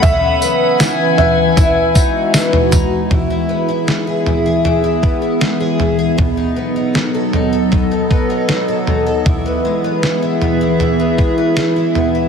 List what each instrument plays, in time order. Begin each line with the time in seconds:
Already playing: twelve-string acoustic guitar F#3 A3, ambient pad F#5, synth texture B5 D#6
0.02 twelve-string acoustic guitar C#3, ambient pad E3 C#4 B4, felt piano E5, kick, floor tom, tambourine
0.42 twelve-string acoustic guitar B3, synth texture G#5, tambourine
0.80 twelve-string acoustic guitar E3, snare, tambourine
1.18 twelve-string acoustic guitar B3, felt piano E5, floor tom
1.57 twelve-string acoustic guitar E3, ambient pad G#3 F#4, kick, floor tom, tambourine
1.95 twelve-string acoustic guitar D#4, kick, tambourine
2.34 twelve-string acoustic guitar B3, snare, tambourine
2.53 floor tom
2.72 twelve-string acoustic guitar D#4, kick, floor tom, tambourine
3.11 twelve-string acoustic guitar E3, ambient pad E3 B3 G#4 E5, kick, floor tom
3.30 twelve-string acoustic guitar E4
3.49 twelve-string acoustic guitar B3
3.68 twelve-string acoustic guitar E4
3.88 twelve-string acoustic guitar G#3, snare
4.07 twelve-string acoustic guitar G#4
4.26 twelve-string acoustic guitar E4, floor tom
4.46 twelve-string acoustic guitar G#4
4.65 twelve-string acoustic guitar E3, floor tom
4.84 twelve-string acoustic guitar E4
5.03 twelve-string acoustic guitar B3, kick
5.22 twelve-string acoustic guitar E4
5.41 twelve-string acoustic guitar G#3, snare
5.60 twelve-string acoustic guitar G#4
5.80 twelve-string acoustic guitar E4, floor tom
5.99 twelve-string acoustic guitar G#4
6.18 twelve-string acoustic guitar B2, ambient pad F#3 A4 D#5, kick, floor tom
6.37 twelve-string acoustic guitar D#4
6.56 twelve-string acoustic guitar B3
6.76 twelve-string acoustic guitar D#4
6.95 twelve-string acoustic guitar F#3, snare
7.14 twelve-string acoustic guitar A4
7.33 twelve-string acoustic guitar D#4, floor tom
7.53 twelve-string acoustic guitar A4
7.72 twelve-string acoustic guitar B2, kick, floor tom
7.91 twelve-string acoustic guitar D#4
8.11 twelve-string acoustic guitar B3, kick
8.30 twelve-string acoustic guitar D#4
8.49 twelve-string acoustic guitar F#3, snare
8.68 twelve-string acoustic guitar A4
8.87 twelve-string acoustic guitar D#4, floor tom
9.07 twelve-string acoustic guitar A4
9.26 twelve-string acoustic guitar E3, ambient pad E3 G#4 E5, kick, floor tom
9.46 twelve-string acoustic guitar B3
9.65 twelve-string acoustic guitar G#3
9.84 twelve-string acoustic guitar B3
10.03 twelve-string acoustic guitar G#3, snare
10.22 twelve-string acoustic guitar E4
10.41 twelve-string acoustic guitar B3, floor tom
10.61 twelve-string acoustic guitar E4
10.80 twelve-string acoustic guitar E3, floor tom
11.00 twelve-string acoustic guitar B3
11.18 twelve-string acoustic guitar G#3, kick
11.38 twelve-string acoustic guitar B3
11.57 twelve-string acoustic guitar G#3, snare
11.76 twelve-string acoustic guitar E4
11.95 twelve-string acoustic guitar B3, floor tom
12.15 twelve-string acoustic guitar E4